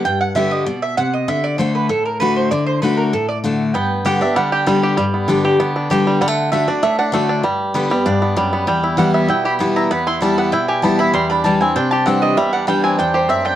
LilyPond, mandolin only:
\new Staff \with { instrumentName = "Mandolin" } { \time 4/4 \key g \major \tempo 4 = 195 g''8 fis''8 e''8 ees''8 d''8 e''8 fis''8 ees''8 | e''8 d''8 c''8 b'8 a'8 bes'8 b'8 c''8 | d''8 c''8 b'8 bes'8 a'8 d''8 r4 | g''4 fis''8 e''8 fis''8 g''8 r4 |
r1 | fis''4 e''8 d''8 e''8 fis''8 r4 | r1 | g''4 fis''8 e''8 g''8 b''8 r8 bes''8 |
b''8 c'''8 a''8 fis''8 g''8 aes''8 a''8 b''8 | c'''8 b''8 a''8 aes''8 g''8 a''8 fis''8 ees''8 | e''8 fis''8 g''8 aes''8 g''8 c''8 e''8 g''8 | }